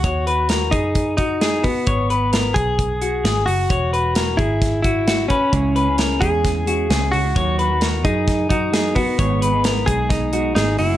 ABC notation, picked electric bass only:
X:1
M:4/4
L:1/8
Q:1/4=131
K:D#phr
V:1 name="Picked electric bass" clef=bass
D,,3 F,,4 z | G,,,3 B,,,3 G,,, F,,, | E,,,3 G,,,4 z | C,,3 E,,3 C,, C,, |
D,,3 F,,4 z | G,,,3 B,,,3 G,,, F,,, |]